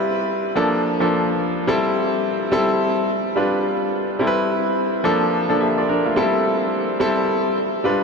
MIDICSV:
0, 0, Header, 1, 2, 480
1, 0, Start_track
1, 0, Key_signature, 0, "minor"
1, 0, Tempo, 560748
1, 1674, Time_signature, 4, 2, 24, 8
1, 6878, End_track
2, 0, Start_track
2, 0, Title_t, "Grand piano"
2, 0, Program_c, 0, 0
2, 0, Control_c, 0, 64, 127
2, 0, Note_on_c, 0, 55, 88
2, 0, Note_on_c, 0, 60, 75
2, 0, Note_on_c, 0, 64, 77
2, 0, Note_on_c, 0, 71, 101
2, 354, Note_off_c, 0, 55, 0
2, 356, Note_off_c, 0, 60, 0
2, 357, Note_off_c, 0, 64, 0
2, 359, Note_off_c, 0, 71, 0
2, 474, Note_on_c, 0, 53, 82
2, 478, Note_on_c, 0, 58, 85
2, 481, Note_on_c, 0, 62, 80
2, 483, Note_on_c, 0, 69, 98
2, 485, Control_c, 0, 64, 0
2, 648, Control_c, 0, 64, 127
2, 772, Note_off_c, 0, 53, 0
2, 775, Note_off_c, 0, 58, 0
2, 776, Note_off_c, 0, 62, 0
2, 777, Note_off_c, 0, 69, 0
2, 857, Note_on_c, 0, 53, 83
2, 860, Note_on_c, 0, 58, 73
2, 865, Note_on_c, 0, 62, 73
2, 869, Note_on_c, 0, 69, 89
2, 1416, Note_off_c, 0, 53, 0
2, 1417, Note_off_c, 0, 58, 0
2, 1420, Note_off_c, 0, 62, 0
2, 1422, Note_off_c, 0, 69, 0
2, 1433, Note_on_c, 0, 55, 93
2, 1437, Note_on_c, 0, 60, 89
2, 1440, Note_on_c, 0, 64, 88
2, 1442, Note_on_c, 0, 69, 104
2, 1445, Control_c, 0, 64, 0
2, 1599, Control_c, 0, 64, 127
2, 2030, Note_off_c, 0, 55, 0
2, 2032, Note_off_c, 0, 60, 0
2, 2034, Note_off_c, 0, 64, 0
2, 2035, Note_off_c, 0, 69, 0
2, 2154, Note_on_c, 0, 55, 100
2, 2160, Note_on_c, 0, 60, 91
2, 2161, Note_on_c, 0, 64, 90
2, 2165, Note_on_c, 0, 69, 110
2, 2634, Note_off_c, 0, 55, 0
2, 2637, Note_off_c, 0, 60, 0
2, 2638, Note_off_c, 0, 64, 0
2, 2639, Note_off_c, 0, 69, 0
2, 2645, Control_c, 0, 64, 0
2, 2790, Control_c, 0, 64, 127
2, 2873, Note_on_c, 0, 55, 74
2, 2876, Note_on_c, 0, 62, 71
2, 2880, Note_on_c, 0, 65, 69
2, 2884, Note_on_c, 0, 71, 85
2, 3373, Note_off_c, 0, 55, 0
2, 3374, Note_off_c, 0, 62, 0
2, 3376, Note_off_c, 0, 65, 0
2, 3378, Note_off_c, 0, 71, 0
2, 3589, Note_on_c, 0, 55, 82
2, 3592, Note_on_c, 0, 60, 75
2, 3598, Note_on_c, 0, 64, 84
2, 3601, Note_on_c, 0, 69, 76
2, 3607, Control_c, 0, 64, 0
2, 3656, Note_on_c, 0, 71, 97
2, 3665, Note_off_c, 0, 69, 0
2, 3768, Control_c, 0, 64, 127
2, 4191, Note_off_c, 0, 55, 0
2, 4193, Note_off_c, 0, 60, 0
2, 4195, Note_off_c, 0, 64, 0
2, 4225, Note_off_c, 0, 71, 0
2, 4313, Note_on_c, 0, 53, 92
2, 4317, Note_on_c, 0, 58, 82
2, 4320, Note_on_c, 0, 62, 79
2, 4323, Control_c, 0, 64, 0
2, 4324, Note_on_c, 0, 69, 101
2, 4486, Control_c, 0, 64, 127
2, 4612, Note_off_c, 0, 53, 0
2, 4614, Note_off_c, 0, 58, 0
2, 4615, Note_off_c, 0, 62, 0
2, 4617, Note_off_c, 0, 69, 0
2, 4699, Note_on_c, 0, 53, 78
2, 4703, Note_on_c, 0, 58, 78
2, 4704, Note_on_c, 0, 62, 75
2, 4710, Note_on_c, 0, 69, 85
2, 4795, Note_off_c, 0, 58, 0
2, 4796, Note_off_c, 0, 62, 0
2, 4798, Note_on_c, 0, 76, 62
2, 4799, Note_off_c, 0, 69, 0
2, 4802, Note_on_c, 0, 67, 55
2, 4935, Note_off_c, 0, 76, 0
2, 4937, Note_off_c, 0, 67, 0
2, 4947, Note_on_c, 0, 74, 68
2, 4952, Note_on_c, 0, 65, 55
2, 5033, Note_off_c, 0, 74, 0
2, 5036, Note_off_c, 0, 65, 0
2, 5041, Note_on_c, 0, 70, 69
2, 5047, Note_on_c, 0, 62, 61
2, 5176, Note_off_c, 0, 70, 0
2, 5179, Note_off_c, 0, 62, 0
2, 5186, Note_on_c, 0, 65, 60
2, 5190, Note_on_c, 0, 57, 52
2, 5257, Note_off_c, 0, 53, 0
2, 5274, Note_on_c, 0, 55, 93
2, 5276, Note_on_c, 0, 60, 89
2, 5281, Note_on_c, 0, 64, 83
2, 5284, Note_on_c, 0, 69, 99
2, 5286, Control_c, 0, 64, 0
2, 5411, Note_off_c, 0, 65, 0
2, 5413, Note_off_c, 0, 57, 0
2, 5447, Control_c, 0, 64, 127
2, 5870, Note_off_c, 0, 55, 0
2, 5871, Note_off_c, 0, 60, 0
2, 5874, Note_off_c, 0, 64, 0
2, 5876, Note_off_c, 0, 69, 0
2, 5991, Note_on_c, 0, 55, 93
2, 5996, Note_on_c, 0, 60, 89
2, 6000, Note_on_c, 0, 64, 87
2, 6001, Note_on_c, 0, 69, 106
2, 6472, Note_off_c, 0, 55, 0
2, 6475, Note_off_c, 0, 60, 0
2, 6477, Note_off_c, 0, 64, 0
2, 6477, Note_off_c, 0, 69, 0
2, 6483, Control_c, 0, 64, 0
2, 6654, Control_c, 0, 64, 127
2, 6711, Note_on_c, 0, 55, 83
2, 6717, Note_on_c, 0, 62, 71
2, 6719, Note_on_c, 0, 65, 73
2, 6720, Note_on_c, 0, 71, 89
2, 6878, Note_off_c, 0, 55, 0
2, 6878, Note_off_c, 0, 62, 0
2, 6878, Note_off_c, 0, 65, 0
2, 6878, Note_off_c, 0, 71, 0
2, 6878, End_track
0, 0, End_of_file